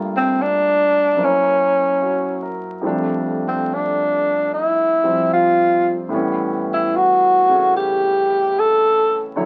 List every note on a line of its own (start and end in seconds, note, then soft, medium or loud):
0.00 1.18 G2 soft
0.00 1.18 G3 soft
0.00 1.19 A3 soft
0.00 1.16 A#3 soft
0.00 1.19 F4 medium
0.17 0.43 C4 medium
0.42 1.25 D4 loud
1.15 2.82 F#2 soft
1.15 2.82 F#3 soft
1.15 2.83 A#3 soft
1.15 2.84 C5 soft
1.20 2.61 C#4 medium
1.20 2.84 E4 soft
2.02 2.67 F#4 soft
2.42 3.00 A#4 soft
2.81 6.10 F2 soft
2.81 5.02 F3 soft
2.81 5.03 G3 soft
2.81 6.12 A3 soft
2.87 6.13 D4 medium
3.48 3.75 C4 medium
3.74 4.52 D4 medium
4.54 5.29 E4 medium
5.04 6.11 F3 soft
5.04 6.10 G3 soft
5.04 6.12 C4 soft
5.33 5.96 F4 medium
6.09 9.34 A2 medium
6.09 9.35 E3 soft
6.09 9.35 G3 medium
6.09 9.36 B3 soft
6.14 7.50 C#4 medium
6.73 6.98 E4 medium
6.96 7.75 F#4 medium
7.48 9.35 C#3 soft
7.48 9.36 A3 soft
7.48 9.37 C#4 soft
7.77 8.61 G4 medium
8.59 9.25 A4 medium
9.36 9.45 D2 medium
9.36 9.45 D3 medium
9.36 9.45 F#3 medium
9.36 9.45 E4 medium
9.36 9.45 C#5 medium